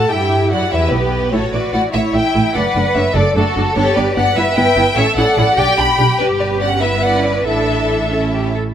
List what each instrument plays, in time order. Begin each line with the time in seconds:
0.09 double bass section G2, cello section E4, viola section G4, violin section E5 G5
0.50 double bass section F#2, viola section F#4, violin section D5 F#5
0.71 double bass section E2, viola section E4, cello section G4, violin section B4 E5
0.91 double bass section B1, viola section B3, violin section G4 B4
1.31 double bass section A1, viola section A3 E4, cello section F#4, violin section A4 C#5
1.53 double bass section A1, viola section A3 E4, violin section B4 D5
1.73 double bass section A1, viola section A3 E4, violin section D5 F#5
1.92 double bass section A1, viola section A3 E4, cello section E4, violin section C#5 E5
2.12 double bass section A1, viola section A3 E4, violin section E5 G5
2.34 double bass section A1, viola section A3 E4
2.53 double bass section F#1, viola section A3 D4, cello section B4, violin section D5 F#5
2.75 double bass section F#1, viola section A3 D4
2.95 double bass section F#1, viola section A3 D4, violin section C#5 E5
3.14 double bass section F#1, viola section A3 D4, violin section A4 D5, cello section A4
3.35 double bass section F#1, viola section A3 D4, violin section F#4 A4
3.56 double bass section F#1, viola section A3 D4
3.75 double bass section G1, viola section B3 D4, cello section G4, violin section A4 C#5
3.95 double bass section G1, viola section B3 D4, violin section B4 D5
4.15 double bass section G1, viola section B3 D4, violin section D5 F#5
4.35 double bass section G1, viola section B3 E4, violin section B4 E5, cello section B4
4.54 double bass section G1, viola section B3 E4, violin section E5 G5
4.76 double bass section G1, viola section B3 E4
4.96 double bass section A1, viola section C#4 E4, cello section A4, violin section C#5 E5
5.16 double bass section A1, viola section C#4 E4, violin section D5 F#5
5.37 double bass section A1, viola section C#4 E4
5.57 double bass section B1, viola section D4 G4, cello section G4, violin section D5 G5
5.78 double bass section B1, viola section D4 G4, violin section G5 B5
5.99 double bass section B1, viola section D4 G4
6.19 double bass section G1, viola section D4 G4, violin section G4 B4
6.39 violin section B4 D5
6.51 viola section C#4
6.60 violin section D5 F#5
6.81 viola section B3 E4, cello section B4, violin section B4 E5
7.02 violin section D5 F#5
7.15 viola section C#4
7.23 violin section B4 D5
7.45 double bass section A1, viola section D4 E4, violin section A4 E5, cello section A4
8.12 viola section C#4 E4, cello section A4
8.33 cello section G4
8.55 cello section A4